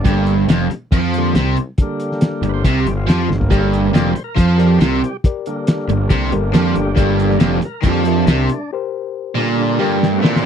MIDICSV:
0, 0, Header, 1, 8, 480
1, 0, Start_track
1, 0, Key_signature, -2, "minor"
1, 0, Tempo, 432588
1, 67, Time_signature, 4, 2, 24, 8
1, 11599, End_track
2, 0, Start_track
2, 0, Title_t, "Reed electric piano"
2, 0, Program_c, 0, 4
2, 3888, Note_on_c, 0, 67, 66
2, 3890, Note_on_c, 0, 70, 62
2, 3902, Note_on_c, 0, 74, 74
2, 4659, Note_off_c, 0, 67, 0
2, 4659, Note_off_c, 0, 70, 0
2, 4665, Note_off_c, 0, 74, 0
2, 5082, Note_on_c, 0, 67, 67
2, 5091, Note_on_c, 0, 70, 59
2, 5101, Note_on_c, 0, 74, 69
2, 5663, Note_off_c, 0, 67, 0
2, 5668, Note_off_c, 0, 70, 0
2, 5673, Note_off_c, 0, 74, 0
2, 5823, Note_on_c, 0, 67, 68
2, 5828, Note_on_c, 0, 70, 63
2, 5837, Note_on_c, 0, 74, 74
2, 6586, Note_off_c, 0, 67, 0
2, 6589, Note_off_c, 0, 70, 0
2, 6593, Note_off_c, 0, 74, 0
2, 7015, Note_on_c, 0, 67, 80
2, 7025, Note_on_c, 0, 70, 74
2, 7026, Note_on_c, 0, 74, 88
2, 7591, Note_off_c, 0, 67, 0
2, 7596, Note_off_c, 0, 70, 0
2, 7596, Note_off_c, 0, 74, 0
2, 7721, Note_on_c, 0, 67, 69
2, 7735, Note_on_c, 0, 70, 62
2, 7738, Note_on_c, 0, 74, 82
2, 8497, Note_off_c, 0, 67, 0
2, 8504, Note_off_c, 0, 70, 0
2, 8506, Note_off_c, 0, 74, 0
2, 8942, Note_on_c, 0, 67, 69
2, 8955, Note_on_c, 0, 70, 63
2, 8961, Note_on_c, 0, 76, 74
2, 9517, Note_off_c, 0, 67, 0
2, 9523, Note_off_c, 0, 70, 0
2, 9526, Note_off_c, 0, 76, 0
2, 9682, Note_on_c, 0, 67, 71
2, 9687, Note_on_c, 0, 70, 60
2, 9693, Note_on_c, 0, 72, 82
2, 10441, Note_off_c, 0, 67, 0
2, 10443, Note_off_c, 0, 70, 0
2, 10446, Note_off_c, 0, 72, 0
2, 10869, Note_on_c, 0, 67, 74
2, 10879, Note_on_c, 0, 70, 68
2, 10882, Note_on_c, 0, 74, 78
2, 11445, Note_off_c, 0, 67, 0
2, 11449, Note_off_c, 0, 70, 0
2, 11451, Note_off_c, 0, 74, 0
2, 11599, End_track
3, 0, Start_track
3, 0, Title_t, "Tonewheel organ"
3, 0, Program_c, 1, 16
3, 0, Note_on_c, 1, 62, 93
3, 95, Note_on_c, 1, 50, 53
3, 110, Note_on_c, 1, 58, 59
3, 119, Note_on_c, 1, 55, 47
3, 168, Note_off_c, 1, 62, 0
3, 399, Note_off_c, 1, 50, 0
3, 407, Note_off_c, 1, 58, 0
3, 412, Note_off_c, 1, 55, 0
3, 1305, Note_on_c, 1, 50, 46
3, 1308, Note_on_c, 1, 58, 55
3, 1310, Note_on_c, 1, 55, 43
3, 1501, Note_off_c, 1, 50, 0
3, 1502, Note_off_c, 1, 58, 0
3, 1503, Note_off_c, 1, 55, 0
3, 2004, Note_on_c, 1, 50, 55
3, 2019, Note_on_c, 1, 58, 60
3, 2027, Note_on_c, 1, 55, 48
3, 2690, Note_off_c, 1, 55, 0
3, 2700, Note_off_c, 1, 50, 0
3, 2703, Note_on_c, 1, 55, 43
3, 2713, Note_off_c, 1, 58, 0
3, 2713, Note_on_c, 1, 50, 44
3, 2726, Note_on_c, 1, 58, 50
3, 2766, Note_on_c, 1, 71, 71
3, 2791, Note_off_c, 1, 71, 0
3, 2815, Note_on_c, 1, 72, 95
3, 2916, Note_off_c, 1, 55, 0
3, 2922, Note_off_c, 1, 50, 0
3, 2928, Note_off_c, 1, 58, 0
3, 2951, Note_off_c, 1, 72, 0
3, 2966, Note_on_c, 1, 70, 73
3, 3107, Note_off_c, 1, 70, 0
3, 3110, Note_on_c, 1, 67, 80
3, 3258, Note_off_c, 1, 67, 0
3, 3294, Note_on_c, 1, 65, 79
3, 3430, Note_off_c, 1, 65, 0
3, 3445, Note_on_c, 1, 67, 78
3, 3585, Note_off_c, 1, 67, 0
3, 3585, Note_on_c, 1, 65, 81
3, 3735, Note_off_c, 1, 65, 0
3, 3773, Note_on_c, 1, 58, 88
3, 3883, Note_on_c, 1, 50, 52
3, 3889, Note_off_c, 1, 58, 0
3, 3891, Note_on_c, 1, 55, 46
3, 3902, Note_on_c, 1, 58, 58
3, 4404, Note_on_c, 1, 74, 92
3, 4536, Note_on_c, 1, 72, 88
3, 4544, Note_off_c, 1, 74, 0
3, 4572, Note_off_c, 1, 50, 0
3, 4576, Note_off_c, 1, 55, 0
3, 4582, Note_off_c, 1, 58, 0
3, 4690, Note_off_c, 1, 72, 0
3, 4705, Note_on_c, 1, 70, 74
3, 4855, Note_off_c, 1, 70, 0
3, 4880, Note_on_c, 1, 72, 80
3, 5022, Note_off_c, 1, 72, 0
3, 5055, Note_on_c, 1, 70, 82
3, 5179, Note_on_c, 1, 67, 92
3, 5190, Note_off_c, 1, 70, 0
3, 5331, Note_off_c, 1, 67, 0
3, 5359, Note_on_c, 1, 65, 81
3, 5502, Note_off_c, 1, 65, 0
3, 5512, Note_on_c, 1, 67, 91
3, 5736, Note_off_c, 1, 67, 0
3, 6070, Note_on_c, 1, 50, 51
3, 6072, Note_on_c, 1, 58, 58
3, 6074, Note_on_c, 1, 55, 51
3, 7253, Note_on_c, 1, 66, 74
3, 7276, Note_off_c, 1, 66, 0
3, 7296, Note_on_c, 1, 67, 108
3, 7743, Note_off_c, 1, 50, 0
3, 7753, Note_off_c, 1, 58, 0
3, 7756, Note_off_c, 1, 55, 0
3, 7757, Note_on_c, 1, 50, 59
3, 7766, Note_on_c, 1, 58, 61
3, 7769, Note_on_c, 1, 55, 51
3, 8208, Note_off_c, 1, 67, 0
3, 8256, Note_on_c, 1, 67, 78
3, 8431, Note_off_c, 1, 50, 0
3, 8436, Note_off_c, 1, 58, 0
3, 8438, Note_off_c, 1, 55, 0
3, 8469, Note_off_c, 1, 67, 0
3, 8492, Note_on_c, 1, 70, 84
3, 8707, Note_off_c, 1, 70, 0
3, 8712, Note_on_c, 1, 50, 46
3, 8719, Note_on_c, 1, 58, 50
3, 8720, Note_on_c, 1, 55, 41
3, 8740, Note_on_c, 1, 67, 81
3, 8921, Note_off_c, 1, 50, 0
3, 8925, Note_off_c, 1, 58, 0
3, 8926, Note_off_c, 1, 55, 0
3, 8952, Note_off_c, 1, 67, 0
3, 8972, Note_on_c, 1, 62, 81
3, 9171, Note_on_c, 1, 61, 68
3, 9188, Note_off_c, 1, 62, 0
3, 9195, Note_off_c, 1, 61, 0
3, 9215, Note_on_c, 1, 62, 96
3, 9664, Note_off_c, 1, 62, 0
3, 10395, Note_on_c, 1, 50, 51
3, 10403, Note_on_c, 1, 55, 49
3, 10408, Note_on_c, 1, 58, 59
3, 10640, Note_on_c, 1, 62, 85
3, 10865, Note_off_c, 1, 62, 0
3, 10879, Note_on_c, 1, 65, 85
3, 11075, Note_off_c, 1, 50, 0
3, 11079, Note_off_c, 1, 55, 0
3, 11082, Note_off_c, 1, 58, 0
3, 11105, Note_off_c, 1, 65, 0
3, 11118, Note_on_c, 1, 67, 90
3, 11215, Note_on_c, 1, 57, 61
3, 11246, Note_on_c, 1, 59, 63
3, 11278, Note_on_c, 1, 60, 66
3, 11296, Note_on_c, 1, 66, 75
3, 11303, Note_on_c, 1, 62, 66
3, 11328, Note_off_c, 1, 67, 0
3, 11329, Note_off_c, 1, 66, 0
3, 11341, Note_on_c, 1, 67, 97
3, 11344, Note_on_c, 1, 64, 63
3, 11385, Note_off_c, 1, 67, 0
3, 11385, Note_on_c, 1, 65, 66
3, 11398, Note_on_c, 1, 67, 66
3, 11432, Note_on_c, 1, 69, 63
3, 11458, Note_off_c, 1, 57, 0
3, 11461, Note_on_c, 1, 71, 63
3, 11474, Note_off_c, 1, 59, 0
3, 11490, Note_off_c, 1, 60, 0
3, 11495, Note_on_c, 1, 72, 65
3, 11502, Note_off_c, 1, 62, 0
3, 11523, Note_off_c, 1, 64, 0
3, 11528, Note_on_c, 1, 74, 65
3, 11543, Note_off_c, 1, 65, 0
3, 11550, Note_off_c, 1, 67, 0
3, 11553, Note_off_c, 1, 72, 0
3, 11561, Note_on_c, 1, 64, 72
3, 11562, Note_on_c, 1, 60, 73
3, 11564, Note_on_c, 1, 67, 70
3, 11567, Note_off_c, 1, 69, 0
3, 11581, Note_off_c, 1, 71, 0
3, 11599, Note_off_c, 1, 60, 0
3, 11599, Note_off_c, 1, 64, 0
3, 11599, Note_off_c, 1, 67, 0
3, 11599, Note_off_c, 1, 74, 0
3, 11599, End_track
4, 0, Start_track
4, 0, Title_t, "Overdriven electric guitar"
4, 0, Program_c, 2, 29
4, 67, Note_on_c, 2, 43, 100
4, 537, Note_off_c, 2, 43, 0
4, 553, Note_on_c, 2, 41, 100
4, 781, Note_off_c, 2, 41, 0
4, 1032, Note_on_c, 2, 53, 107
4, 1494, Note_off_c, 2, 53, 0
4, 1498, Note_on_c, 2, 48, 94
4, 1732, Note_off_c, 2, 48, 0
4, 2709, Note_on_c, 2, 43, 63
4, 2894, Note_off_c, 2, 43, 0
4, 2950, Note_on_c, 2, 48, 102
4, 3175, Note_off_c, 2, 48, 0
4, 3198, Note_on_c, 2, 43, 66
4, 3379, Note_off_c, 2, 43, 0
4, 3421, Note_on_c, 2, 53, 98
4, 3647, Note_on_c, 2, 43, 70
4, 3651, Note_off_c, 2, 53, 0
4, 3843, Note_off_c, 2, 43, 0
4, 3900, Note_on_c, 2, 43, 90
4, 4363, Note_off_c, 2, 43, 0
4, 4368, Note_on_c, 2, 41, 99
4, 4603, Note_off_c, 2, 41, 0
4, 4832, Note_on_c, 2, 53, 104
4, 5312, Note_off_c, 2, 53, 0
4, 5316, Note_on_c, 2, 48, 97
4, 5557, Note_off_c, 2, 48, 0
4, 6537, Note_on_c, 2, 43, 67
4, 6727, Note_off_c, 2, 43, 0
4, 6774, Note_on_c, 2, 48, 105
4, 6995, Note_on_c, 2, 43, 70
4, 7006, Note_off_c, 2, 48, 0
4, 7196, Note_off_c, 2, 43, 0
4, 7248, Note_on_c, 2, 53, 102
4, 7484, Note_off_c, 2, 53, 0
4, 7488, Note_on_c, 2, 43, 73
4, 7683, Note_off_c, 2, 43, 0
4, 7713, Note_on_c, 2, 43, 103
4, 8197, Note_off_c, 2, 43, 0
4, 8202, Note_on_c, 2, 41, 105
4, 8441, Note_off_c, 2, 41, 0
4, 8675, Note_on_c, 2, 53, 103
4, 9159, Note_off_c, 2, 53, 0
4, 9177, Note_on_c, 2, 48, 107
4, 9410, Note_off_c, 2, 48, 0
4, 10382, Note_on_c, 2, 46, 97
4, 10856, Note_off_c, 2, 46, 0
4, 10857, Note_on_c, 2, 43, 98
4, 11332, Note_on_c, 2, 46, 103
4, 11334, Note_off_c, 2, 43, 0
4, 11558, Note_off_c, 2, 46, 0
4, 11562, Note_on_c, 2, 48, 100
4, 11599, Note_off_c, 2, 48, 0
4, 11599, End_track
5, 0, Start_track
5, 0, Title_t, "Picked electric bass"
5, 0, Program_c, 3, 34
5, 52, Note_on_c, 3, 31, 87
5, 503, Note_off_c, 3, 31, 0
5, 539, Note_on_c, 3, 29, 88
5, 764, Note_off_c, 3, 29, 0
5, 1018, Note_on_c, 3, 41, 93
5, 1465, Note_off_c, 3, 41, 0
5, 1501, Note_on_c, 3, 36, 90
5, 1723, Note_off_c, 3, 36, 0
5, 2686, Note_on_c, 3, 31, 77
5, 2914, Note_off_c, 3, 31, 0
5, 2931, Note_on_c, 3, 36, 93
5, 3157, Note_off_c, 3, 36, 0
5, 3175, Note_on_c, 3, 31, 70
5, 3398, Note_off_c, 3, 31, 0
5, 3424, Note_on_c, 3, 41, 81
5, 3643, Note_off_c, 3, 41, 0
5, 3651, Note_on_c, 3, 31, 77
5, 3876, Note_off_c, 3, 31, 0
5, 3896, Note_on_c, 3, 31, 83
5, 4341, Note_off_c, 3, 31, 0
5, 4364, Note_on_c, 3, 29, 81
5, 4592, Note_off_c, 3, 29, 0
5, 4852, Note_on_c, 3, 41, 89
5, 5298, Note_off_c, 3, 41, 0
5, 5330, Note_on_c, 3, 36, 86
5, 5555, Note_off_c, 3, 36, 0
5, 6527, Note_on_c, 3, 31, 79
5, 6753, Note_off_c, 3, 31, 0
5, 6773, Note_on_c, 3, 36, 98
5, 6996, Note_off_c, 3, 36, 0
5, 7013, Note_on_c, 3, 31, 81
5, 7236, Note_off_c, 3, 31, 0
5, 7252, Note_on_c, 3, 41, 84
5, 7476, Note_off_c, 3, 41, 0
5, 7502, Note_on_c, 3, 31, 79
5, 7722, Note_off_c, 3, 31, 0
5, 7734, Note_on_c, 3, 31, 94
5, 8181, Note_off_c, 3, 31, 0
5, 8203, Note_on_c, 3, 29, 85
5, 8432, Note_off_c, 3, 29, 0
5, 8697, Note_on_c, 3, 41, 91
5, 9144, Note_off_c, 3, 41, 0
5, 9177, Note_on_c, 3, 36, 98
5, 9401, Note_off_c, 3, 36, 0
5, 11599, End_track
6, 0, Start_track
6, 0, Title_t, "Muted overdriven electric guitar strokes"
6, 801, Note_on_c, 9, 29, 54
6, 912, Note_off_c, 9, 29, 0
6, 4614, Note_on_c, 9, 29, 50
6, 4725, Note_off_c, 9, 29, 0
6, 8445, Note_on_c, 9, 29, 58
6, 8556, Note_off_c, 9, 29, 0
6, 11599, End_track
7, 0, Start_track
7, 0, Title_t, "Muted picked electric bass strokes"
7, 787, Note_on_c, 9, 29, 39
7, 898, Note_off_c, 9, 29, 0
7, 4614, Note_on_c, 9, 29, 40
7, 4725, Note_off_c, 9, 29, 0
7, 8458, Note_on_c, 9, 29, 42
7, 8569, Note_off_c, 9, 29, 0
7, 11599, End_track
8, 0, Start_track
8, 0, Title_t, "Drums"
8, 58, Note_on_c, 9, 42, 80
8, 61, Note_on_c, 9, 36, 93
8, 169, Note_off_c, 9, 42, 0
8, 172, Note_off_c, 9, 36, 0
8, 294, Note_on_c, 9, 42, 60
8, 405, Note_off_c, 9, 42, 0
8, 542, Note_on_c, 9, 42, 94
8, 554, Note_on_c, 9, 38, 117
8, 653, Note_off_c, 9, 42, 0
8, 665, Note_off_c, 9, 38, 0
8, 786, Note_on_c, 9, 42, 61
8, 897, Note_off_c, 9, 42, 0
8, 1021, Note_on_c, 9, 36, 93
8, 1023, Note_on_c, 9, 42, 82
8, 1132, Note_off_c, 9, 36, 0
8, 1134, Note_off_c, 9, 42, 0
8, 1263, Note_on_c, 9, 42, 62
8, 1374, Note_off_c, 9, 42, 0
8, 1497, Note_on_c, 9, 42, 80
8, 1509, Note_on_c, 9, 38, 97
8, 1608, Note_off_c, 9, 42, 0
8, 1620, Note_off_c, 9, 38, 0
8, 1738, Note_on_c, 9, 42, 64
8, 1849, Note_off_c, 9, 42, 0
8, 1973, Note_on_c, 9, 42, 90
8, 1978, Note_on_c, 9, 36, 94
8, 2084, Note_off_c, 9, 42, 0
8, 2089, Note_off_c, 9, 36, 0
8, 2216, Note_on_c, 9, 42, 64
8, 2327, Note_off_c, 9, 42, 0
8, 2349, Note_on_c, 9, 38, 32
8, 2452, Note_on_c, 9, 42, 98
8, 2460, Note_off_c, 9, 38, 0
8, 2464, Note_on_c, 9, 38, 113
8, 2563, Note_off_c, 9, 42, 0
8, 2575, Note_off_c, 9, 38, 0
8, 2696, Note_on_c, 9, 42, 66
8, 2807, Note_off_c, 9, 42, 0
8, 2935, Note_on_c, 9, 36, 98
8, 2939, Note_on_c, 9, 42, 99
8, 3046, Note_off_c, 9, 36, 0
8, 3050, Note_off_c, 9, 42, 0
8, 3181, Note_on_c, 9, 42, 66
8, 3292, Note_off_c, 9, 42, 0
8, 3424, Note_on_c, 9, 42, 88
8, 3436, Note_on_c, 9, 38, 97
8, 3535, Note_off_c, 9, 42, 0
8, 3547, Note_off_c, 9, 38, 0
8, 3675, Note_on_c, 9, 38, 56
8, 3785, Note_on_c, 9, 43, 82
8, 3786, Note_off_c, 9, 38, 0
8, 3896, Note_off_c, 9, 43, 0
8, 3896, Note_on_c, 9, 36, 99
8, 3902, Note_on_c, 9, 42, 79
8, 4007, Note_off_c, 9, 36, 0
8, 4013, Note_off_c, 9, 42, 0
8, 4144, Note_on_c, 9, 42, 59
8, 4255, Note_off_c, 9, 42, 0
8, 4379, Note_on_c, 9, 42, 97
8, 4391, Note_on_c, 9, 38, 113
8, 4490, Note_off_c, 9, 42, 0
8, 4502, Note_off_c, 9, 38, 0
8, 4613, Note_on_c, 9, 42, 65
8, 4724, Note_off_c, 9, 42, 0
8, 4850, Note_on_c, 9, 36, 97
8, 4858, Note_on_c, 9, 42, 86
8, 4961, Note_off_c, 9, 36, 0
8, 4969, Note_off_c, 9, 42, 0
8, 5100, Note_on_c, 9, 42, 70
8, 5210, Note_off_c, 9, 42, 0
8, 5334, Note_on_c, 9, 42, 83
8, 5346, Note_on_c, 9, 38, 99
8, 5445, Note_off_c, 9, 42, 0
8, 5457, Note_off_c, 9, 38, 0
8, 5592, Note_on_c, 9, 42, 62
8, 5703, Note_off_c, 9, 42, 0
8, 5816, Note_on_c, 9, 36, 100
8, 5822, Note_on_c, 9, 42, 84
8, 5927, Note_off_c, 9, 36, 0
8, 5933, Note_off_c, 9, 42, 0
8, 6057, Note_on_c, 9, 42, 61
8, 6168, Note_off_c, 9, 42, 0
8, 6294, Note_on_c, 9, 42, 102
8, 6306, Note_on_c, 9, 38, 110
8, 6405, Note_off_c, 9, 42, 0
8, 6417, Note_off_c, 9, 38, 0
8, 6536, Note_on_c, 9, 42, 68
8, 6647, Note_off_c, 9, 42, 0
8, 6770, Note_on_c, 9, 42, 95
8, 6773, Note_on_c, 9, 36, 107
8, 6881, Note_off_c, 9, 42, 0
8, 6884, Note_off_c, 9, 36, 0
8, 7015, Note_on_c, 9, 42, 72
8, 7126, Note_off_c, 9, 42, 0
8, 7254, Note_on_c, 9, 42, 89
8, 7266, Note_on_c, 9, 38, 105
8, 7365, Note_off_c, 9, 42, 0
8, 7377, Note_off_c, 9, 38, 0
8, 7495, Note_on_c, 9, 42, 68
8, 7606, Note_off_c, 9, 42, 0
8, 7735, Note_on_c, 9, 36, 99
8, 7738, Note_on_c, 9, 42, 91
8, 7846, Note_off_c, 9, 36, 0
8, 7849, Note_off_c, 9, 42, 0
8, 7983, Note_on_c, 9, 42, 68
8, 8094, Note_off_c, 9, 42, 0
8, 8109, Note_on_c, 9, 38, 35
8, 8211, Note_on_c, 9, 42, 94
8, 8220, Note_off_c, 9, 38, 0
8, 8224, Note_on_c, 9, 38, 112
8, 8322, Note_off_c, 9, 42, 0
8, 8335, Note_off_c, 9, 38, 0
8, 8454, Note_on_c, 9, 42, 67
8, 8565, Note_off_c, 9, 42, 0
8, 8687, Note_on_c, 9, 42, 92
8, 8695, Note_on_c, 9, 36, 105
8, 8798, Note_off_c, 9, 42, 0
8, 8806, Note_off_c, 9, 36, 0
8, 8932, Note_on_c, 9, 42, 68
8, 9043, Note_off_c, 9, 42, 0
8, 9176, Note_on_c, 9, 42, 82
8, 9188, Note_on_c, 9, 38, 102
8, 9287, Note_off_c, 9, 42, 0
8, 9299, Note_off_c, 9, 38, 0
8, 9424, Note_on_c, 9, 42, 65
8, 9535, Note_off_c, 9, 42, 0
8, 11130, Note_on_c, 9, 38, 55
8, 11241, Note_off_c, 9, 38, 0
8, 11367, Note_on_c, 9, 38, 88
8, 11478, Note_off_c, 9, 38, 0
8, 11497, Note_on_c, 9, 38, 88
8, 11599, Note_off_c, 9, 38, 0
8, 11599, End_track
0, 0, End_of_file